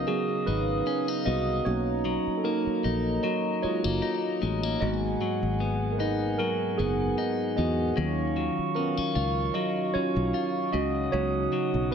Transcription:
0.00 1.66 C#3 medium
0.00 1.67 F#3 medium
0.00 0.09 B3 soft
0.00 0.47 B3 medium
0.00 1.62 B3 medium
0.00 1.66 C#4 medium
0.00 0.48 D#4 medium
0.00 0.86 D#4 medium
0.00 1.27 F#4 medium
0.00 1.68 A#4 medium
0.00 1.65 C#5 medium
0.00 1.26 D#5 medium
0.00 1.62 F5 medium
0.00 1.62 D#6 medium
0.07 2.05 F#3 medium
0.07 0.45 B3 medium
0.07 0.44 G#4 medium
0.46 0.81 G#1 medium
0.46 1.26 B3 medium
0.46 1.23 D#4 medium
0.46 1.22 B4 medium
0.87 1.08 C#4 medium
1.08 1.74 D#4 medium
1.26 1.60 C2 medium
1.26 2.44 B3 medium
1.26 1.64 F#4 medium
1.26 1.67 D#5 loud
1.65 2.17 B1 loud
1.65 4.78 A#3 medium
1.65 4.78 C#4 medium
1.65 2.45 D#4 medium
1.65 2.35 F#4 medium
1.65 2.40 C#5 loud
1.65 4.78 D#5 medium
1.65 4.78 A#5 medium
2.05 3.23 F#3 medium
2.27 muted fingered electric bass stroke soft
2.38 2.44 A4 medium
2.44 3.63 A#3 medium
2.44 3.20 D#4 medium
2.44 3.26 A#4 medium
2.67 muted fingered electric bass stroke soft
2.84 3.18 A#1 medium
2.84 4.02 D#4 medium
3.23 5.21 F#3 medium
3.23 3.61 F#4 medium
3.23 3.64 D#5 medium
3.62 3.84 G#3 medium
3.62 4.39 F4 medium
3.62 4.38 C#5 medium
3.62 muted fingered electric bass stroke soft
3.84 4.00 F#1 medium
3.84 4.41 A#3 medium
4.02 6.00 D#4 medium
4.42 4.75 A1 medium
4.42 4.63 G#3 medium
4.63 4.90 A#3 soft
4.80 5.15 G#1 loud
4.80 7.97 G#2 medium
4.80 5.96 A#3 medium
4.80 5.96 B3 soft
4.80 5.90 F#4 medium
4.80 7.94 G#4 medium
4.80 5.96 D#5 medium
4.80 7.94 F#5 medium
4.80 7.94 G#5 medium
5.21 6.39 F#3 medium
5.43 6.36 G#1 medium
5.60 6.78 B3 medium
5.92 5.99 A#4 medium
5.98 7.18 D#4 medium
5.98 6.37 D#4 medium
5.98 6.36 B4 medium
6.38 8.36 F#3 medium
6.38 6.77 D#4 medium
6.38 6.79 A#4 medium
6.78 7.12 F#1 medium
6.78 7.57 B3 medium
6.78 7.54 B3 medium
6.78 7.53 G#4 medium
7.18 9.00 D#4 medium
7.56 7.91 E2 medium
7.56 8.06 B3 medium
7.56 7.95 F#4 medium
7.56 7.98 D#5 medium
7.96 8.48 D#2 loud
7.96 10.73 D#3 medium
7.96 9.12 F#3 medium
7.96 8.76 C#4 soft
7.96 10.71 D#4 medium
7.96 8.73 F4 medium
7.96 8.78 C#5 medium
7.96 10.71 F5 medium
7.96 10.71 C#6 medium
8.36 9.55 F#3 medium
8.58 muted fingered electric bass stroke soft
8.75 8.97 B3 medium
8.75 9.52 C#4 medium
8.75 9.57 A#4 medium
8.97 9.93 C#4 medium
8.97 muted fingered electric bass stroke soft
9.15 9.49 C#2 medium
9.15 10.33 F4 medium
9.54 11.52 F#3 medium
9.54 9.92 F#4 medium
9.54 9.95 D#5 medium
9.94 10.30 F#3 medium
9.94 11.92 C#4 medium
9.94 10.30 C#4 soft
9.94 10.70 F4 medium
9.94 10.76 C#5 medium
9.94 muted fingered electric bass stroke soft
10.16 10.31 B1 medium
10.34 10.82 F4 medium
10.72 11.07 C#2 loud
10.72 11.12 C#3 medium
10.72 11.11 F#4 medium
10.72 11.95 C#5 medium
10.72 11.10 D#5 medium
10.72 11.95 F#5 medium
10.72 11.95 D#6 medium
11.12 11.46 C#2 loud
11.12 11.95 C#3 medium
11.12 11.95 F#3 medium
11.12 11.95 B3 medium
11.12 11.92 D#4 medium
11.12 11.89 F#4 medium
11.12 11.94 C#5 medium
11.53 11.95 F#3 medium
11.74 11.95 B1 medium
11.91 11.95 B4 medium

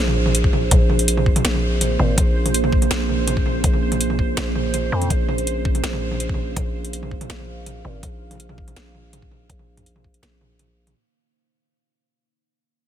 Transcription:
0.00 0.70 A#1 loud
0.00 10.92 A#3 medium
0.00 10.92 C#4 medium
0.00 5.06 F4 medium
0.00 5.08 C5 medium
0.00 10.97 C5 medium
0.08 mid tom medium
0.26 mid tom medium
0.35 closed hi-hat medium
0.44 kick medium
0.53 mid tom medium
0.71 1.43 A#1 loud
0.71 kick loud
0.71 closed hi-hat medium
0.71 mid tom medium
0.90 mid tom medium
0.99 closed hi-hat soft
1.08 closed hi-hat medium
1.17 mid tom medium
1.26 kick medium
1.36 closed hi-hat soft
1.36 mid tom medium
1.45 1.98 A#1 loud
1.45 snare loud
1.45 closed hi-hat medium
1.54 mid tom medium
1.81 closed hi-hat medium
1.81 mid tom medium
1.99 2.16 G#1 loud
1.99 mid tom medium
2.18 2.89 A#1 medium
2.18 kick loud
2.18 closed hi-hat medium
2.18 mid tom soft
2.46 closed hi-hat soft
2.46 mid tom soft
2.54 closed hi-hat medium
2.64 mid tom medium
2.73 kick loud
2.82 closed hi-hat soft
2.82 mid tom soft
2.91 3.63 A#1 medium
2.91 snare loud
2.91 closed hi-hat medium
3.09 mid tom soft
3.28 closed hi-hat medium
3.28 mid tom medium
3.37 kick medium
3.46 mid tom soft
3.64 4.36 A#1 loud
3.64 kick loud
3.64 closed hi-hat medium
3.73 mid tom soft
3.92 closed hi-hat soft
3.92 mid tom medium
4.01 closed hi-hat medium
4.10 mid tom soft
4.19 kick medium
4.37 4.91 A#1 loud
4.37 snare loud
4.37 closed hi-hat medium
4.37 mid tom soft
4.55 mid tom medium
4.74 closed hi-hat medium
4.74 mid tom soft
4.92 5.09 F2 loud
5.02 closed hi-hat soft
5.02 mid tom soft
5.10 5.82 A#1 loud
5.10 10.92 D#4 medium
5.10 10.93 F5 medium
5.10 kick loud
5.10 closed hi-hat medium
5.10 mid tom soft
5.29 mid tom medium
5.38 closed hi-hat soft
5.47 closed hi-hat medium
5.65 kick loud
5.75 closed hi-hat soft
5.75 mid tom soft
5.83 6.55 A#1 medium
5.83 snare loud
5.83 closed hi-hat medium
5.93 mid tom medium
6.11 mid tom soft
6.20 closed hi-hat medium
6.29 kick medium
6.34 mid tom soft
6.57 7.28 A#1 loud
6.57 kick loud
6.57 closed hi-hat medium
6.57 mid tom medium
6.85 closed hi-hat soft
6.93 closed hi-hat medium
7.03 mid tom medium
7.11 kick medium
7.21 closed hi-hat soft
7.21 mid tom medium
7.30 7.83 A#1 medium
7.30 snare loud
7.30 closed hi-hat medium
7.39 mid tom soft
7.66 closed hi-hat medium
7.66 mid tom soft
7.85 8.02 G#1 loud
7.85 mid tom medium
8.03 8.75 A#1 loud
8.03 kick loud
8.03 closed hi-hat medium
8.03 mid tom medium
8.31 closed hi-hat soft
8.31 mid tom soft
8.33 mid tom soft
8.35 mid tom soft
8.38 closed hi-hat medium
8.38 mid tom soft
8.49 mid tom medium
8.58 kick medium
8.68 closed hi-hat soft
8.68 mid tom medium
8.76 9.48 A#1 medium
8.76 snare loud
8.76 closed hi-hat medium
8.95 mid tom medium
9.13 closed hi-hat medium
9.13 mid tom medium
9.22 kick medium
9.31 mid tom medium
9.50 10.21 A#1 loud
9.50 kick loud
9.50 closed hi-hat medium
9.59 mid tom medium
9.77 closed hi-hat soft
9.77 mid tom medium
9.86 closed hi-hat medium
9.96 mid tom medium
10.04 kick medium
10.14 closed hi-hat soft
10.23 10.94 A#1 medium
10.23 snare loud
10.23 closed hi-hat medium
10.23 mid tom medium
10.41 mid tom medium
10.59 closed hi-hat medium
10.59 mid tom medium
10.87 closed hi-hat soft
10.87 mid tom medium

